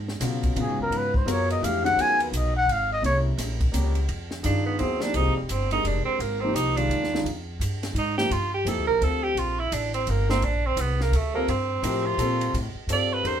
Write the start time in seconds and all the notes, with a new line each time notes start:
Already playing: G#2
0.08 snare
0.20 B2 C#3 F#3 B3 F4, snare, hi-hat pedal, ride
0.43 kick, ride
0.56 A#2 C#3 F#3 B3 F4, ride
0.62 G#4
0.68 G#2
0.79 F#2 A#4
0.90 G#2, ride
0.97 B4
1.14 C5, kick
1.25 F#2 F#3 B3 F4 A#4, hi-hat pedal, ride
1.31 C#5
1.50 D#5, ride
1.62 F2 E3 A3 D4 G4 F5, hi-hat pedal, ride
1.83 D#3 G#3 C#4 F#4 F#5, ride
1.96 D#2 F#3 B3 F4 A#4, ride
2.01 G#5
2.20 B4, ride
2.32 B1 D#5, hi-hat pedal, ride
2.56 F#5
2.66 G#1, ride
2.72 F5
2.92 D#5
3.02 C2 G3 A#3 C#4 E4 C#5, ride
3.37 A#1, snare, hi-hat pedal, ride
3.60 kick, ride
3.72 C#2 G3 A#3 C#4 G4, hi-hat pedal, ride
3.95 ride
4.09 F2, ride
4.31 snare
4.43 G2 D#3 D4 F4 G#4, hi-hat pedal, ride
4.66 B3
4.79 D#2 F#3 B3 C4 E4 G#4, ride
5.01 F3 A#3 D4 D#4 G4, snare
5.14 C2 G3 C4 D#4 F4 G#4, ride
5.26 G#1
5.36 F1 G3
5.49 G1 C4, hi-hat pedal, ride
5.71 G#3 D4 D#4 G4 A#4, ride
5.84 F1 D4, ride
6.05 C4, muted upright bass stroke
6.19 G#1 A#3, ride
6.41 F3 A#3 C4 D#4 G4
6.53 C2 D#4, hi-hat pedal, ride
6.76 D#3 G#3 D4 F4, ride
6.89 D#2, ride
7.04 snare
7.13 D#3 G#3 D4 F4, snare
7.24 F2, ride
7.60 G2, hi-hat pedal, ride
7.83 snare, ride
7.94 G#2, ride
7.98 D#4
8.18 F3 A#3 E4 G4, snare
8.30 G2 F4, ride
8.54 G4
8.65 F2 F3 A#3 E4 G4 A4, hi-hat pedal, ride
8.77 D2
8.87 A#1 A#4
9.01 D2 G3 C4 F4 A4, ride
9.24 G4
9.35 A#1, ride
9.39 F4
9.59 E4
9.72 A1 D4, hi-hat pedal, ride
9.94 C4, ride
10.07 G1 A#3, ride
10.29 A#3 C4 E4 A4 C5, snare
10.42 A#1 D4, ride
10.66 C4
10.76 C2 B3, hi-hat pedal, ride
11.00 A#3, snare
11.11 D2, ride
11.16 A3
11.34 G3 A#3 C4 F4 A4
11.48 G2 C4, ride
11.82 A2 F3 E4 G4 A#4, hi-hat pedal, ride
12.06 F4
12.18 A#2 G3 C4 F4 A4, hi-hat pedal, ride
12.41 ride
12.54 A2, ride
12.75 muted upright bass stroke
12.87 G2 G3 C4 F4 A4, hi-hat pedal, ride
12.93 D5
13.13 B4
13.23 E2 D4 G4 A4 A#4, ride
13.27 C5